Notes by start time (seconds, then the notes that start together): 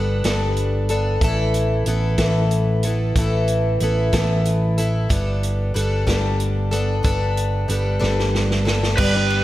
Already playing: G1 G3 B3 D4 A4
0.24 G1 G3 B3 D4 A4, snare, closed hi-hat
0.57 closed hi-hat
0.89 B3 D4 A4, closed hi-hat
1.21 A1 A2 E3 B3 E4 A4, kick, closed hi-hat
1.54 closed hi-hat
1.86 A1 E3 B3 E4 A4, closed hi-hat
2.18 A1 A2 E3 B3 E4 A4, kick, snare, closed hi-hat
2.51 closed hi-hat
2.83 E4 A4, closed hi-hat
2.87 B3
3.16 A1 A2 E3 B3 E4 A4, kick, closed hi-hat
3.48 closed hi-hat
3.80 A1 E3 B3 E4 A4, closed hi-hat
4.13 A1 A2 E3 B3 E4 A4, kick, snare, closed hi-hat
4.45 closed hi-hat
4.78 B3 E4 A4, closed hi-hat
5.09 G1 G3 B3 D4 A4, kick, closed hi-hat
5.43 closed hi-hat
5.74 G1 G3 B3 D4 A4, closed hi-hat
6.07 G1 G3 B3 D4 A4, kick, snare, closed hi-hat
6.40 closed hi-hat
6.71 B3 D4 A4, closed hi-hat
7.03 G1 G3 B3 D4 A4, kick, closed hi-hat
7.37 closed hi-hat
7.68 G1 G3 B3 D4 A4, closed hi-hat
8.00 G1 G3 B3 D4 A4, snare
8.19 snare
8.35 snare
8.51 snare
8.65 B3 D4 A4, snare
8.83 snare
8.97 G1 G2 D3 G3 B3 D4 G4 B4, kick, crash
9.14 G3 B3 D4 G4
9.30 ride